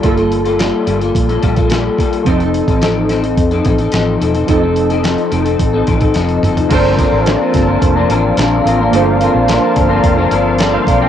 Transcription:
<<
  \new Staff \with { instrumentName = "Analog synth pad" } { \time 4/4 \key g \minor \tempo 4 = 108 << { r1 | r1 | r1 | <bes f'' c'''>1~ |
<bes f'' c'''>1 | } \\ { r1 | r1 | r1 | a''1 |
a''1 | } >> }
  \new Staff \with { instrumentName = "Synth keys" } { \time 4/4 \key g \minor << { r1 | r1 | r1 | r1 |
r2. <a' d''>16 <c'' f''>8 <d'' g''>16 | } \\ { <g bes f' a'>1 | <f c' ees' a'>1 | <f c' ees' a'>1 | <bes f' a' c''>1 |
<bes f' a' c''>1 | } >> }
  \new Staff \with { instrumentName = "Clean electric guitar" } { \time 4/4 \key g \minor <g bes f' a'>16 <bes f' a'>8 <bes f' a'>16 <g bes f' a'>8 <g bes f' a'>16 <bes f' a'>8 <bes f' a'>16 <g bes f' a'>16 <bes f' a'>16 <g bes f' a'>8 <g bes f' a'>8 | <f c' ees' a'>16 <c' ees' a'>8 <c' ees' a'>16 <f c' ees' a'>8 <f c' ees' a'>16 <c' ees' a'>8 <c' ees' a'>16 <f c' ees' a'>16 <c' ees' a'>16 <f c' ees' a'>8 <f c' ees' a'>16 <c' ees' a'>16 | <f c' ees' a'>16 <c' ees' a'>8 <c' ees' a'>16 <f c' ees' a'>8 <f c' ees' a'>16 <c' ees' a'>8 <c' ees' a'>16 <f c' ees' a'>16 <c' ees' a'>16 <f c' ees' a'>8 <f c' ees' a'>8 | <g, d f c' d' bes'>8 <f c' d' bes'>8 <g, d f c' d' bes'>16 <f c' d' bes'>8 <f c' d' bes'>8 <f c' d' bes'>16 <f c' d' bes'>8 <g, d f c' d' bes'>8 <f c' d' bes'>16 <f c' d' bes'>16 |
<g, d f c' d' bes'>8 <f c' d' bes'>8 <g, d f c' d' bes'>16 <f c' d' bes'>8 <f c' d' bes'>8 <f c' d' bes'>16 <f c' d' bes'>8 <g, d f c' d' bes'>8 <f c' d' bes'>16 <f c' d' bes'>16 | }
  \new Staff \with { instrumentName = "Fingered electric bass" } { \clef bass \time 4/4 \key g \minor g,,4~ g,,16 r16 g,,8 bes,,8 bes,,4 r8 | f,,8. a,,4~ a,,16 f,8 a,,8 a,,8 e,,8 | f,,4~ f,,16 r16 f,,8 a,,8 a,,8 f,,8 fis,,16 r16 | g,,8. a,,8 r16 g,,8 f,,8 a,,8 bes,,8 a,,8 |
g,,8. bes,,8 r16 g,,8 f,,8 g,,4 b,,8 | }
  \new DrumStaff \with { instrumentName = "Drums" } \drummode { \time 4/4 <hh bd>16 hh16 hh16 hh16 <hh sn>8 hh16 hh16 <hh bd>16 hh16 <hh bd>16 <hh bd>16 <hh sn>8 <hh bd>16 hh16 | <hh bd>16 hh16 hh16 <hh bd>16 <hh sn>8 <hh sn>16 hh16 <hh bd>16 hh16 <hh bd>16 hh16 <hh sn>8 hh16 hh16 | <hh bd>8 hh16 hh16 <hh sn>16 hh16 hh16 hh16 <hh bd>8 <hh bd>16 <hh bd>16 <hh sn>16 hh16 <hh toml>16 <hh tomfh>16 | <cymc hh bd>8 <hh bd>8 <hh sn>8 <hh bd sn>8 <hh bd>8 hh8 <hh sn>8 hh8 |
hh8 hh8 <hh sn>8 <hh bd>8 <hh bd>8 hh8 <hh sn>8 <hh bd>8 | }
>>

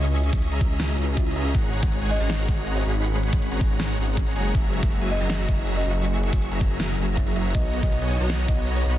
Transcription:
<<
  \new Staff \with { instrumentName = "Kalimba" } { \time 4/4 \key fis \mixolydian \tempo 4 = 160 r16 gis''8. r16 ais''8. r16 ais''8 r16 e''16 r16 e''16 r16 | fis''8 r16 fis''8 r16 dis''8. r16 fis''8 r16 e''16 r8 | r16 ais''8. r16 b''8. r16 b''8 r16 ais''16 r16 gis''16 r16 | e''8 r16 e''8 r16 dis''8. r16 e''8 r16 dis''16 r8 |
r16 gis''8. r16 ais''8. r16 ais''8 r16 e''16 r16 e''16 r16 | dis''8 r16 dis''8 r16 cis''8. r16 dis''8 r16 cis''16 r8 | }
  \new Staff \with { instrumentName = "Supersaw synth" } { \time 4/4 \key fis \mixolydian <cis' gis' dis'' e'' cis'''>8. <cis' gis' dis'' e'' cis'''>8 <cis' gis' dis'' e'' ais''>8 <cis' gis' dis'' e'' ais''>8. <cis' gis' dis'' e'' ais''>4 <cis' gis' dis'' e'' ais''>8 | <gis gis' cis'' fis'' ais''>8. <gis gis' cis'' fis'' ais''>8 <gis gis' cis'' fis'' gis''>8 <gis gis' cis'' fis'' ais''>8. <gis gis' cis'' fis'' ais''>4 <gis gis' cis'' fis'' b''>8~ | <gis gis' cis'' fis'' b''>8. <gis gis' cis'' fis'' b''>8 <gis gis' cis'' fis'' ais''>8 <gis gis' cis'' fis'' ais''>8. <gis gis' cis'' fis'' ais''>4 <gis gis' cis'' fis'' ais''>8 | <fis fis' gis' e'' ais''>8. <fis fis' gis' e'' ais''>8 <fis fis' gis' e'' gis''>8 <fis fis' gis' e'' ais''>8. <fis fis' gis' e'' ais''>4 <fis fis' gis' e'' cis'''>8~ |
<fis fis' gis' e'' cis'''>8. <fis fis' gis' e'' cis'''>8 <fis fis' gis' e'' ais''>8 <fis fis' gis' e'' ais''>8. <fis fis' gis' e'' ais''>4 <fis fis' gis' e'' ais''>8 | <b fis' cis'' dis'' ais''>8. <b fis' cis'' dis'' ais''>8 <b fis' cis'' dis'' gis''>8 <b fis' cis'' dis'' ais''>8. <b fis' cis'' dis'' ais''>4 <b fis' cis'' dis'' b''>8 | }
  \new Staff \with { instrumentName = "Ambient pad" } { \time 4/4 \key fis \mixolydian <cis cis' e' fis'>1 | <gis cis' fis'>1~ | <gis cis' fis'>1 | <fis e' gis' ais'>1~ |
<fis e' gis' ais'>1 | <b dis'>1 | }
  \new Staff \with { instrumentName = "Detuned saw bass" } { \clef bass \time 4/4 \key fis \mixolydian cis,8. cis,8 cis,8 cis,8. cis,4 cis,8 | gis,,8. gis,,8 gis,,8 gis,,8. gis,,4 gis,,8~ | gis,,8. gis,,8 gis,,8 gis,,8. gis,,4 fis,,8 | fis,,8. fis,,8 fis,,8 fis,,8. fis,,4 fis,,8~ |
fis,,8. fis,,8 fis,,8 fis,,8. fis,,4 fis,,8 | b,,8. b,,8 b,,8 b,,8. b,,4 b,,8 | }
  \new DrumStaff \with { instrumentName = "Drums" } \drummode { \time 4/4 hh8 hh16 bd16 hh16 hh16 <hh bd>8 <hh sn>8 hh8 <hh bd>16 hh32 hh32 hh8 | <hh bd>8 hh16 bd16 hh16 hh16 hh8 <hh sn>8 <hh bd>8 hh16 hh32 hh32 hh8 | hh8 hh16 bd16 hh16 hh16 <hh bd>8 <hh sn>8 hh8 <hh bd>16 hh32 hh32 hh8 | <hh bd>8 hh16 bd16 hh16 hh16 hh8 <hh sn>8 <hh bd>8 hh16 hh32 hh32 hh8 |
hh8 hh16 bd16 hh16 hh16 <hh bd>8 <hh sn>8 hh8 <hh bd>16 hh32 hh32 hh8 | <hh bd>8 hh16 bd16 hh16 hh16 hh8 <hh sn>8 <hh bd>8 hh16 hh32 hh32 hh8 | }
>>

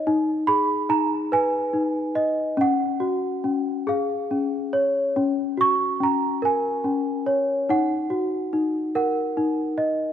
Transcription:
\new Staff \with { instrumentName = "Celesta" } { \time 6/8 \key fis \major \tempo 4. = 48 << { r8 b''8 ais''8 gis''4. | fis''4. eis''4 r8 | r8 cis'''8 ais''8 gis''4. | fis''4. fis''4 r8 | } \\ { dis'8 gis'8 dis'8 b'8 dis'8 dis''8 | cis'8 fis'8 cis'8 gis'8 cis'8 cis''8 | cis'8 fis'8 cis'8 ais'8 cis'8 cis''8 | dis'8 fis'8 dis'8 ais'8 dis'8 dis''8 | } >> }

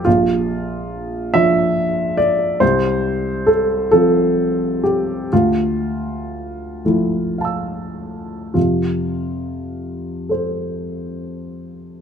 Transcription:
<<
  \new Staff \with { instrumentName = "Upright piano" } { \time 6/8 \key f \major \tempo 4. = 42 << { r2. | r2. | r2 <f'' a'' e'''>4 | r4. <a' c''>4. | } \\ { f'4. e''4 d''8 | c''4 a'8 a'4 g'8 | f'4. r4. | f'2. | } >> }
  \new Staff \with { instrumentName = "Upright piano" } { \clef bass \time 6/8 \key f \major bes,,4. <f d' f'>4. | c,4. <f c' f'>4. | d,4. <f a e'>4. | <f, c>2. | }
>>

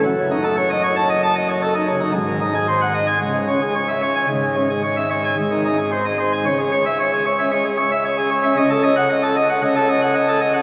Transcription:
<<
  \new Staff \with { instrumentName = "Pipe organ" } { \time 4/4 \key cis \minor \tempo 4 = 113 << { r4. r16 a''16 r2 | r4. r16 gis''16 r4. r16 gis''16 | r4. r16 gis''16 r4. r16 gis''16 | cis''16 gis'16 cis''16 e''16 cis''16 gis'16 cis''16 e''16 cis''16 gis'16 cis''16 e''16 cis''16 gis'16 cis''16 e''16 |
dis''16 a'16 dis''16 fis''16 dis''16 a'16 dis''16 fis''16 dis''16 a'16 dis''16 fis''16 dis''16 a'16 dis''16 fis''16 | } \\ { fis,16 cis16 dis'16 a'16 cis''16 dis''16 cis''16 r16 dis''16 a''16 dis''16 cis''16 a'16 dis'16 cis16 dis'16 | gis,16 dis16 dis'16 gis'16 bis'16 fis''16 dis''16 r16 cis16 gis16 cis'16 gis'16 cis''16 e''16 cis''16 r16 | gis,16 gis16 cis'16 gis'16 cis''16 e''16 cis''16 r16 gis,16 dis16 dis'16 gis'16 bis'16 dis''16 bis'16 r16 | cis4.~ cis16 cis'16 gis16 r4. cis'16 |
cis2 cis2 | } >> }
  \new Staff \with { instrumentName = "Pipe organ" } { \clef bass \time 4/4 \key cis \minor fis,,1 | gis,,2 cis,2 | gis,,2 gis,,2 | cis,1 |
cis,2 cis,2 | }
>>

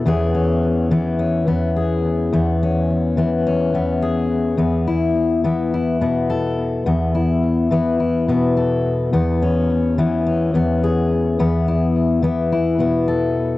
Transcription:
\new Staff \with { instrumentName = "Steel-string acoustic guitar" } { \time 4/4 \key e \major \tempo 4 = 106 << { <e b cis' gis'>8 cis'4 b8 cis'8 b8 gis'4 | b8 cis'4 b8 cis'8 b8 gis'4 | b8 e'4 b8 e'8 b8 a'4 | b8 e'4 b8 e'8 b8 a'4 |
b8 cis'4 b8 cis'8 b8 gis'4 | b8 e'4 b8 e'8 b8 a'4 | } \\ { e,4. e4 e,4. | e,4. e4 e,4. | e,4. e4 b,4. | e,4. e4 b,4. |
e,4. e4 e,4. | e,4. e4 b,4. | } >> }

